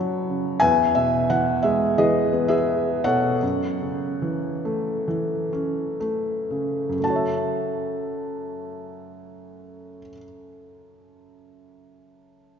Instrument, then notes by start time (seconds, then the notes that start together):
felt piano
Already playing: F#2 C#3 F#3 C#4 F#4 C#5 A5 B5
0.29 C#3
0.60 E2 B4 E5 G#5
0.95 B2 E5
1.30 E3 F#5
1.63 G#3 E5
1.98 E3 G#4 B4 D#5
2.33 B3
2.48 G#4 B4 E5
3.04 B2 A4 C#5 F#5
3.43 F#2
3.81 C#3
4.22 E3
4.65 A3
5.08 E3
5.53 C#4
6.00 A3
6.50 C#3
6.89 F#2
6.94 C#3
7.00 A3
7.04 F#4 A5
7.10 C#5
7.16 E5